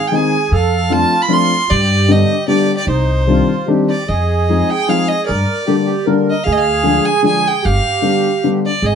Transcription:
0.00 0.55 G#4 medium
0.08 0.33 G#3 medium
0.08 0.17 G5 medium
0.12 0.33 D#3 medium
0.12 0.33 C4 medium
0.12 0.33 D#4 medium
0.12 0.53 G#5 medium
0.51 1.03 F2 medium
0.51 0.92 A4 loud
0.51 0.94 F5 medium
0.90 1.11 F3 medium
0.90 1.12 A3 medium
0.90 1.12 C4 soft
0.90 1.12 D4 medium
0.90 1.71 F4 medium
0.90 1.24 A5 loud
1.22 1.35 B5 loud
1.28 1.50 F3 medium
1.28 1.51 A3 medium
1.28 1.50 C4 medium
1.28 1.50 D4 medium
1.33 1.72 C6 loud
1.70 2.22 G2 medium
1.70 2.47 G4 medium
1.70 2.13 D5 loud
2.08 2.30 D3 medium
2.08 2.30 G3 medium
2.08 2.30 B3 medium
2.08 2.30 D4 medium
2.08 2.48 D#5 medium
2.48 2.69 D3 medium
2.48 2.69 G3 medium
2.48 2.69 B3 medium
2.48 2.69 D4 medium
2.48 2.89 G4 medium
2.48 2.73 D5 medium
2.77 2.88 D5 medium
2.87 3.39 C2 medium
2.87 3.24 D#4 medium
2.87 3.65 C5 medium
3.27 3.48 D#3 medium
3.27 3.49 G3 medium
3.27 3.49 C4 medium
3.27 3.49 D4 medium
3.27 3.69 F4 medium
3.66 3.89 D#3 medium
3.66 3.89 G3 medium
3.66 3.89 C4 medium
3.66 3.89 D4 medium
3.66 4.04 G4 medium
3.90 4.10 D5 medium
4.08 4.60 F2 medium
4.08 5.31 G#4 loud
4.08 4.72 D#5 medium
4.49 4.70 F3 medium
4.49 4.70 G#3 soft
4.49 4.70 C4 medium
4.49 4.70 D#4 medium
4.70 4.91 G5 medium
4.88 5.09 F3 medium
4.88 5.09 G#3 soft
4.88 5.09 C4 medium
4.88 5.09 D#4 medium
4.88 5.10 F5 medium
5.09 5.26 D#5 medium
5.26 5.42 G2 medium
5.26 5.64 A#4 medium
5.26 6.02 D5 medium
5.67 5.88 D3 medium
5.67 5.88 G3 medium
5.67 5.88 A#3 medium
5.67 5.89 D4 medium
5.67 5.76 G4 loud
5.86 6.06 G4 medium
6.06 6.28 D3 medium
6.06 6.28 G3 medium
6.06 6.28 A#3 medium
6.06 6.28 D4 medium
6.06 6.43 A#4 medium
6.30 6.46 D#5 medium
6.44 6.97 D2 medium
6.44 7.67 G#4 loud
6.44 6.54 F5 medium
6.52 6.59 D#5 medium
6.58 7.07 F5 loud
6.83 7.05 D3 medium
6.83 7.05 F3 soft
6.83 7.05 G#3 medium
6.83 7.06 D4 medium
7.06 7.24 G#5 medium
7.22 7.44 D3 medium
7.22 7.45 F3 medium
7.22 7.44 G#3 medium
7.22 7.45 D4 medium
7.22 7.49 G#5 medium
7.48 7.67 G5 medium
7.63 7.78 G1 medium
7.63 8.60 G4 medium
7.63 8.44 F5 loud
8.02 8.24 D3 medium
8.02 8.24 G3 medium
8.02 8.24 B3 medium
8.02 8.24 D4 medium
8.44 8.65 D3 medium
8.44 8.65 G3 medium
8.44 8.65 B3 medium
8.44 8.65 D4 medium
8.67 8.87 D5 medium
8.82 8.95 G#1 medium
8.82 8.95 G#4 loud
8.82 8.95 D#5 medium

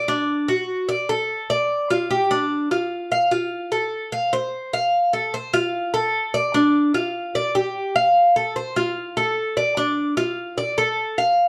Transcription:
0.08 0.47 D4 medium
0.48 0.88 F#4 medium
0.89 1.08 D5 medium
1.09 1.48 A4 medium
1.50 1.89 D5 medium
1.90 2.10 F4 medium
2.11 2.30 G4 medium
2.31 2.70 D4 medium
2.71 3.10 F4 medium
3.12 3.31 F5 medium
3.31 3.71 F4 medium
3.72 4.11 A4 medium
4.12 4.32 F5 medium
4.33 4.72 C5 medium
4.73 5.12 F5 medium
5.13 5.33 A4 medium
5.34 5.53 C5 medium
5.54 5.93 F4 medium
5.94 6.33 A4 medium
6.34 6.54 D5 medium
6.54 6.93 D4 medium
6.94 7.34 F4 medium
7.35 7.55 D5 medium
7.55 7.94 G4 medium
7.96 8.35 F5 medium
8.36 8.56 A4 medium
8.56 8.76 C5 medium
8.76 9.15 F4 medium
9.17 9.56 A4 medium
9.57 9.76 D5 medium
9.77 10.16 D4 medium
10.17 10.56 F4 medium
10.58 10.77 D5 medium
10.78 11.17 A4 medium
11.18 11.48 F5 medium

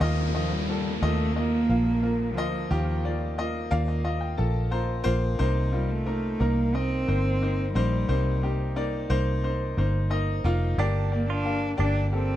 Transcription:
0.00 0.98 D#2 medium
0.00 0.98 D#3 medium
0.00 0.29 A#3 medium
0.00 0.30 F4 medium
0.00 0.30 D#5 loud
0.00 downlifter medium
0.34 0.53 F3 medium
0.34 0.63 A#3 medium
0.34 0.63 F4 medium
0.34 0.64 D#5 medium
0.52 1.00 G3 medium
0.68 0.97 A#3 medium
0.68 0.98 F4 medium
0.68 0.98 A4 medium
1.01 1.66 D#2 medium
1.01 1.35 A3 medium
1.01 1.31 A#3 medium
1.01 1.31 F4 medium
1.01 1.31 D#5 medium
1.34 2.35 A#3 loud
1.34 1.65 A#3 medium
1.34 1.65 F4 medium
1.34 1.65 D#5 medium
1.69 2.37 A#1 medium
1.69 1.98 A#3 medium
1.69 1.99 F4 medium
1.69 1.99 F5 medium
2.02 2.32 A#3 medium
2.02 2.32 F4 medium
2.02 2.32 A#4 medium
2.34 2.68 D2 medium
2.34 3.37 F3 medium
2.34 2.66 A#3 medium
2.34 2.66 F4 medium
2.38 2.66 D#5 loud
2.71 3.68 D#2 loud
2.71 3.68 D#3 medium
2.71 3.00 A#3 medium
2.71 2.99 F4 medium
2.71 3.00 G4 medium
3.04 3.33 A#3 medium
3.04 3.34 F4 medium
3.04 3.34 D5 medium
3.38 3.67 A#3 medium
3.38 3.67 F4 medium
3.38 3.67 D#5 medium
3.71 4.35 D#2 medium
3.71 4.00 A#3 loud
3.71 4.00 F4 medium
3.71 3.87 D5 medium
3.71 4.00 F5 loud
3.88 4.03 D#5 medium
4.04 4.34 A#3 medium
4.04 4.34 F4 medium
4.04 4.34 D#5 medium
4.04 4.21 F5 medium
4.21 4.37 G5 medium
4.37 5.03 A#1 medium
4.37 4.67 A#3 medium
4.37 4.67 F4 medium
4.37 4.67 A4 medium
4.37 4.70 A5 medium
4.71 5.01 A#3 medium
4.71 5.01 F4 medium
4.71 5.01 C5 medium
4.71 5.03 A#5 medium
5.04 5.38 A#1 medium
5.04 5.34 A#3 loud
5.04 5.34 F4 medium
5.04 5.34 C5 loud
5.04 5.37 C6 medium
5.39 6.37 C2 medium
5.39 6.37 C3 medium
5.39 5.68 A#3 loud
5.39 5.68 D#4 medium
5.39 5.68 C5 loud
5.73 5.93 G3 medium
5.73 6.02 A#3 medium
5.73 6.02 D#4 medium
5.73 6.02 F4 medium
5.92 6.42 A3 medium
6.06 6.36 A#3 medium
6.06 6.36 D#4 medium
6.06 6.36 A#4 medium
6.40 7.04 C2 medium
6.40 6.69 A#3 medium
6.40 6.76 A#3 medium
6.40 6.70 D#4 medium
6.40 6.70 A#4 medium
6.74 7.03 A#3 medium
6.74 7.74 C4 loud
6.74 7.04 D#4 medium
6.74 7.04 D#5 medium
7.08 7.72 G1 medium
7.08 7.37 A#3 medium
7.08 7.37 D#4 medium
7.08 7.37 C5 medium
7.42 7.71 A#3 medium
7.42 7.71 D#4 medium
7.42 7.71 C5 medium
7.74 8.07 A#1 medium
7.74 8.72 G3 medium
7.74 8.04 A#3 medium
7.74 8.04 D#4 medium
7.74 8.05 C5 loud
8.09 9.06 C2 medium
8.09 9.06 C3 medium
8.09 8.38 A#3 medium
8.09 8.38 D#4 medium
8.09 8.38 C5 medium
8.43 8.72 A#3 medium
8.43 8.72 D#4 medium
8.43 8.72 G4 medium
8.76 9.05 A#3 medium
8.76 9.05 D#4 medium
8.76 9.05 D5 medium
9.10 9.74 C2 medium
9.10 9.39 A#3 medium
9.10 9.39 D#4 medium
9.10 9.39 C5 loud
9.44 9.73 A#3 medium
9.44 9.73 D#4 medium
9.44 9.73 C5 medium
9.77 10.41 G1 medium
9.77 10.06 A#3 medium
9.77 10.07 D#4 medium
9.77 10.07 C5 medium
10.10 10.39 A#3 medium
10.10 10.40 D#4 medium
10.10 10.40 D#5 medium
10.44 10.76 F1 medium
10.44 10.73 A#3 medium
10.44 10.74 D#4 medium
10.44 10.74 F4 loud
10.78 11.75 G1 medium
10.78 11.76 G2 medium
10.78 11.07 A#3 loud
10.78 11.11 D4 medium
10.78 11.07 G4 medium
10.78 11.07 D5 loud
11.11 11.41 A#3 medium
11.11 11.29 A#3 medium
11.11 11.41 G4 medium
11.11 11.41 D5 medium
11.30 11.76 D4 loud
11.30 11.62 F4 medium
11.45 11.74 A#3 medium
11.45 11.74 G4 medium
11.45 11.74 F5 medium
11.77 12.36 G1 medium
11.77 12.07 A#3 medium
11.77 11.96 D4 medium
11.77 12.11 D4 medium
11.77 12.07 G4 medium
11.77 12.07 D5 medium
12.12 12.36 A#3 medium
12.12 12.36 C4 medium
12.12 12.36 G4 medium
12.12 12.36 A4 medium

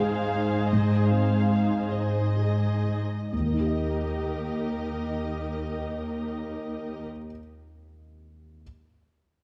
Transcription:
0.00 0.68 G#2 soft
0.00 3.02 G#2 soft
0.00 3.06 G#3 soft
0.00 0.73 C4 soft
0.00 0.36 D#4 soft
0.00 3.02 D#4 soft
0.00 0.56 G#4 soft
0.00 3.03 G#4 soft
0.00 0.19 C5 soft
0.00 3.07 C5 soft
0.00 0.71 F5 medium
0.36 0.95 D#4 soft
0.71 3.30 G#2 soft
0.71 1.10 D#5 soft
1.10 1.76 C4 soft
1.10 1.92 F5 medium
1.50 2.18 D#4 soft
1.91 2.65 C5 soft
1.91 3.31 D#5 soft
2.37 3.14 G#4 soft
2.85 3.33 D#4 soft
3.32 7.03 D#2 soft
3.32 7.04 A#3 soft
3.32 7.05 D#4 soft
3.32 7.05 G4 soft
3.32 7.04 A#4 soft
3.32 7.03 D#5 soft
3.39 7.10 D#3 soft
3.46 7.17 A#3 soft
3.53 7.24 D#4 soft
3.60 7.31 G4 soft
3.67 7.38 D#5 soft

